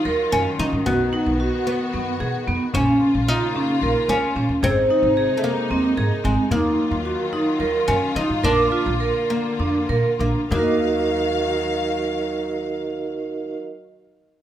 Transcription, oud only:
0, 0, Header, 1, 2, 480
1, 0, Start_track
1, 0, Key_signature, -6, "minor"
1, 0, Tempo, 538117
1, 770, Time_signature, 7, 3, 24, 8
1, 6291, Tempo, 555556
1, 7731, Tempo, 598205
1, 9171, Tempo, 630915
1, 12143, End_track
2, 0, Start_track
2, 0, Title_t, "Oud"
2, 0, Program_c, 0, 24
2, 0, Note_on_c, 0, 58, 110
2, 288, Note_on_c, 0, 61, 114
2, 325, Note_off_c, 0, 58, 0
2, 526, Note_off_c, 0, 61, 0
2, 530, Note_on_c, 0, 63, 108
2, 768, Note_on_c, 0, 59, 103
2, 777, Note_off_c, 0, 63, 0
2, 1478, Note_off_c, 0, 59, 0
2, 1489, Note_on_c, 0, 59, 87
2, 2173, Note_off_c, 0, 59, 0
2, 2450, Note_on_c, 0, 61, 109
2, 2926, Note_off_c, 0, 61, 0
2, 2930, Note_on_c, 0, 63, 118
2, 3614, Note_off_c, 0, 63, 0
2, 3650, Note_on_c, 0, 61, 111
2, 4136, Note_on_c, 0, 60, 117
2, 4144, Note_off_c, 0, 61, 0
2, 4790, Note_off_c, 0, 60, 0
2, 4794, Note_on_c, 0, 57, 78
2, 4847, Note_off_c, 0, 57, 0
2, 4851, Note_on_c, 0, 58, 93
2, 5570, Note_off_c, 0, 58, 0
2, 5573, Note_on_c, 0, 56, 84
2, 5808, Note_off_c, 0, 56, 0
2, 5812, Note_on_c, 0, 58, 97
2, 7003, Note_on_c, 0, 61, 100
2, 7038, Note_off_c, 0, 58, 0
2, 7245, Note_off_c, 0, 61, 0
2, 7249, Note_on_c, 0, 63, 95
2, 7490, Note_off_c, 0, 63, 0
2, 7493, Note_on_c, 0, 62, 104
2, 8197, Note_on_c, 0, 58, 86
2, 8222, Note_off_c, 0, 62, 0
2, 8891, Note_off_c, 0, 58, 0
2, 8923, Note_on_c, 0, 58, 69
2, 9154, Note_off_c, 0, 58, 0
2, 9174, Note_on_c, 0, 58, 84
2, 11487, Note_off_c, 0, 58, 0
2, 12143, End_track
0, 0, End_of_file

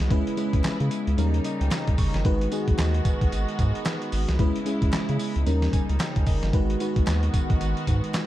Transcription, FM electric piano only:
0, 0, Header, 1, 2, 480
1, 0, Start_track
1, 0, Key_signature, 5, "minor"
1, 0, Tempo, 535714
1, 94, Time_signature, 4, 2, 24, 8
1, 7405, End_track
2, 0, Start_track
2, 0, Title_t, "FM electric piano"
2, 0, Program_c, 0, 5
2, 0, Control_c, 0, 64, 127
2, 0, Note_on_c, 0, 54, 93
2, 0, Note_on_c, 0, 59, 78
2, 0, Note_on_c, 0, 63, 76
2, 0, Note_on_c, 0, 68, 102
2, 92, Note_on_c, 0, 56, 91
2, 96, Note_on_c, 0, 61, 80
2, 99, Note_on_c, 0, 64, 86
2, 102, Note_on_c, 0, 71, 104
2, 104, Control_c, 0, 64, 0
2, 105, Note_off_c, 0, 68, 0
2, 108, Note_off_c, 0, 54, 0
2, 110, Note_off_c, 0, 59, 0
2, 112, Note_off_c, 0, 63, 0
2, 253, Control_c, 0, 64, 127
2, 265, Note_off_c, 0, 56, 0
2, 267, Note_off_c, 0, 61, 0
2, 269, Note_off_c, 0, 64, 0
2, 270, Note_off_c, 0, 71, 0
2, 332, Note_on_c, 0, 56, 91
2, 335, Note_on_c, 0, 61, 81
2, 338, Note_on_c, 0, 64, 75
2, 343, Note_on_c, 0, 71, 99
2, 971, Note_off_c, 0, 56, 0
2, 973, Note_off_c, 0, 61, 0
2, 974, Note_off_c, 0, 64, 0
2, 977, Note_off_c, 0, 71, 0
2, 1053, Note_on_c, 0, 55, 85
2, 1056, Note_on_c, 0, 61, 81
2, 1060, Note_on_c, 0, 63, 82
2, 1064, Note_on_c, 0, 70, 95
2, 1067, Control_c, 0, 64, 0
2, 1245, Control_c, 0, 64, 127
2, 1300, Note_on_c, 0, 75, 80
2, 1432, Note_off_c, 0, 75, 0
2, 1444, Note_on_c, 0, 79, 70
2, 1530, Note_off_c, 0, 79, 0
2, 1541, Note_on_c, 0, 82, 74
2, 1761, Note_off_c, 0, 82, 0
2, 1780, Note_on_c, 0, 85, 78
2, 1831, Note_off_c, 0, 55, 0
2, 1833, Note_off_c, 0, 61, 0
2, 1835, Note_off_c, 0, 63, 0
2, 1837, Note_off_c, 0, 70, 0
2, 2000, Note_off_c, 0, 85, 0
2, 2014, Note_on_c, 0, 56, 86
2, 2016, Note_on_c, 0, 63, 88
2, 2020, Note_on_c, 0, 66, 87
2, 2023, Note_on_c, 0, 71, 109
2, 2025, Control_c, 0, 64, 0
2, 2172, Control_c, 0, 64, 127
2, 2186, Note_off_c, 0, 56, 0
2, 2187, Note_off_c, 0, 63, 0
2, 2189, Note_off_c, 0, 66, 0
2, 2191, Note_off_c, 0, 71, 0
2, 2252, Note_on_c, 0, 56, 81
2, 2256, Note_on_c, 0, 63, 84
2, 2259, Note_on_c, 0, 66, 85
2, 2263, Note_on_c, 0, 68, 99
2, 2891, Note_off_c, 0, 56, 0
2, 2893, Note_off_c, 0, 63, 0
2, 2895, Note_off_c, 0, 66, 0
2, 2897, Note_off_c, 0, 68, 0
2, 3933, Note_on_c, 0, 56, 88
2, 3937, Note_on_c, 0, 61, 80
2, 3941, Note_on_c, 0, 64, 84
2, 3944, Control_c, 0, 64, 0
2, 3944, Note_on_c, 0, 71, 100
2, 4106, Note_off_c, 0, 56, 0
2, 4107, Note_off_c, 0, 61, 0
2, 4110, Note_off_c, 0, 64, 0
2, 4111, Note_off_c, 0, 71, 0
2, 4117, Control_c, 0, 64, 127
2, 4171, Note_on_c, 0, 56, 89
2, 4175, Note_on_c, 0, 61, 81
2, 4179, Note_on_c, 0, 64, 82
2, 4182, Note_on_c, 0, 68, 89
2, 4811, Note_off_c, 0, 56, 0
2, 4813, Note_off_c, 0, 61, 0
2, 4815, Note_off_c, 0, 64, 0
2, 4816, Note_off_c, 0, 68, 0
2, 4892, Note_on_c, 0, 55, 85
2, 4895, Note_on_c, 0, 61, 83
2, 4898, Note_on_c, 0, 63, 76
2, 4902, Note_on_c, 0, 70, 91
2, 4905, Control_c, 0, 64, 0
2, 5077, Control_c, 0, 64, 127
2, 5138, Note_on_c, 0, 80, 74
2, 5359, Note_off_c, 0, 80, 0
2, 5380, Note_on_c, 0, 79, 75
2, 5601, Note_off_c, 0, 79, 0
2, 5619, Note_on_c, 0, 75, 71
2, 5671, Note_off_c, 0, 55, 0
2, 5673, Note_off_c, 0, 61, 0
2, 5674, Note_off_c, 0, 63, 0
2, 5676, Note_off_c, 0, 70, 0
2, 5840, Note_off_c, 0, 75, 0
2, 5853, Note_on_c, 0, 56, 92
2, 5856, Note_on_c, 0, 63, 82
2, 5860, Note_on_c, 0, 66, 87
2, 5864, Note_on_c, 0, 71, 102
2, 5867, Control_c, 0, 64, 0
2, 6007, Control_c, 0, 64, 127
2, 6025, Note_off_c, 0, 56, 0
2, 6027, Note_off_c, 0, 63, 0
2, 6029, Note_off_c, 0, 66, 0
2, 6031, Note_off_c, 0, 71, 0
2, 6094, Note_on_c, 0, 56, 81
2, 6097, Note_on_c, 0, 63, 80
2, 6101, Note_on_c, 0, 66, 86
2, 6105, Note_on_c, 0, 71, 98
2, 6732, Note_off_c, 0, 56, 0
2, 6734, Note_off_c, 0, 63, 0
2, 6736, Note_off_c, 0, 66, 0
2, 6738, Note_off_c, 0, 71, 0
2, 7405, End_track
0, 0, End_of_file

